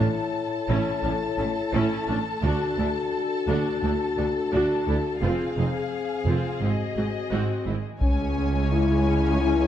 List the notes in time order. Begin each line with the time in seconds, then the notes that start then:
Already playing: E4 A4 C#5 A5
0.68 A1 A2 C#4 E4
1.03 A1 A2 C#4 D4
1.38 A1 A2 C#4 E4
1.73 A1 A2 C#4 E4
2.08 A1 A2 C#4 D4
2.43 D2 D4 F#4
2.77 D2 D4 E4
3.47 D2 D4 F#4
3.83 D2 D4 E4
4.17 D2 D4 F#4
4.52 D2 D4 F#4
4.88 D2 D4 E4
5.22 F1 F2 C4 F4 G#4 F5
5.57 F1 F2 C4 D#4
6.26 F1 F2 C4 F4
6.61 G#1 G#2 C4 E4 F#4 D#5
6.96 G#1 G#2 C4 F#4
7.31 G#1 G#2 C4 F#4
7.66 G#1 G#2 C4 E4
8.00 C#2 G#3 C#4 C#5 G#5, taiko
8.71 E4
9.40 E4